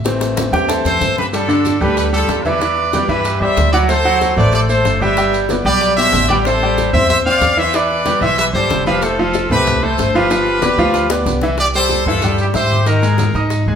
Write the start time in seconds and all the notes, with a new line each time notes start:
Already playing: A1
0.05 E3 A3 C4, high bongo, high conga, maracas
0.21 high bongo, high conga, maracas
0.37 low bongo, high conga, maracas
0.52 E2 G4 G5, low bongo, maracas
0.69 A4 C5 E5 A5, low bongo, high conga, maracas
0.85 F2 A4 C5, low bongo, high conga, maracas
1.01 G2, low bongo, high conga, maracas
1.18 G4 B4, low bongo, maracas
1.33 G3 D4 G4 A4, high bongo, high conga, maracas
1.48 D3 D4 D5, high conga, maracas
1.65 high bongo, high conga, maracas
1.81 D2 G3 G4 A4 B4, high conga, low conga, maracas
1.97 G4 B4, high bongo, high conga, maracas
2.13 G3 F4 G4 A4, high conga, maracas
2.28 E2, high bongo, low bongo, high conga, maracas
2.45 E3 E4 B4 D5 E5, high conga, maracas
2.61 E3 E4 E5, high bongo, high conga, maracas
2.77 high bongo, high conga
2.93 G3 G4 B4, high bongo, high conga, maracas
3.08 G2 E3 E4 G4 B4 E5, high bongo, maracas
3.25 high bongo, high conga, maracas
3.40 E2 G3 G4 C5 D5 E5, high conga
3.57 D2, high bongo, low bongo, high conga, maracas
3.73 F#3 F#4 B4 D5 F#5, high bongo, maracas
3.89 A3 A4 C5, high bongo, high conga, maracas
4.05 F#3 F#4 F#5, high conga
4.21 high bongo, high conga, maracas
4.37 A1 A3 A4 B4 C5 D5, high conga, low conga, maracas
4.53 A4 D5, high bongo, high conga, maracas
4.69 A3 A4 C5, high conga, maracas
4.85 G1, high bongo, low bongo, maracas
5.01 G3 G4 B4 E5 G5, high conga, maracas
5.17 G3 G4 G5, high bongo, high conga, maracas
5.33 high bongo, high conga, maracas
5.49 B3 B4 D5, high bongo, high conga, maracas
5.65 B1 G3 G4 B4 D5 G5, high bongo, maracas
5.81 high bongo, high conga, maracas
5.97 B2 G4 C5 D5 E5, high conga, maracas
6.13 A1, high bongo, low bongo, high conga, maracas
6.29 G3 G4 B4 D5 G5, high bongo, high conga, maracas
6.45 C4 A4 C5 E5, high bongo, maracas
6.62 G3 G4 G5, high conga
6.78 high bongo, high conga, maracas
6.93 E2 C4 C5 E5, high conga, low conga, maracas
7.09 C5 E5, high bongo, high conga, low conga, maracas
7.25 C4 C5 D5 F5 G5, high conga
7.41 E2, high bongo, low bongo, high conga, maracas
7.57 E3 E4 C5 E5, maracas
7.73 E3 E4 B4 D5 E5, high bongo, high conga, maracas
7.89 high bongo, high conga
8.06 G3 G4 B4, high bongo, high conga, maracas
8.21 B1 E3 E4 C5 E5, high bongo, maracas
8.38 B4 E5, high bongo, high conga, maracas
8.53 G1 G3 G4 A4 C5 D5
8.70 F1, high bongo, low bongo, high conga, maracas
8.86 F3 F4 G4 B4 F5, high bongo, maracas
9.02 A3 F4 A4 C5, high bongo, high conga, maracas
9.19 F3 F4 F5, high conga
9.34 high bongo, high conga, maracas
9.50 C2 A3 C4 G4 A4 B4, high conga, low conga, maracas
9.66 high bongo, high conga, low conga, maracas
9.83 A3 A4 C5
9.98 G1, high bongo, low bongo, high conga, maracas
10.14 F3 F4 G4 B4 F5, maracas
10.30 F3 F4 F5, high bongo, high conga, maracas
10.47 high bongo, high conga
10.62 B3 B4 D5, high bongo, high conga, maracas
10.78 D2 F3 F4 F5, high bongo, maracas
10.94 high bongo, high conga, maracas
11.10 B3 B4 D5, high bongo, high conga, maracas
11.26 C2, low bongo, high conga, maracas
11.41 E3 E4 E5, low bongo, maracas
11.58 G4 D5, high bongo, high conga, maracas
11.74 G3 G4 A4 C5 G5, high conga, maracas
11.89 high bongo, high conga, maracas
12.06 G2 E3 E4 F4 A4 E5, high conga, low conga, maracas
12.22 G3 G4 G5, high bongo, high conga, low conga, maracas
12.38 E4 G4, high conga, maracas
12.54 G#2 E4 G4 C5 E5 E6, high bongo, low bongo, high conga, maracas
12.71 high conga, maracas
12.86 D#3 D#4 A#4 D#5, high bongo, high conga, maracas
13.02 G#3 G#4 G#5, high bongo, maracas
13.18 high bongo, high conga, maracas
13.34 G#2 D#4 D#5 D#6, high bongo, maracas
13.50 high bongo, high conga, maracas
13.66 D#2 G#3 G#4 G#5, high conga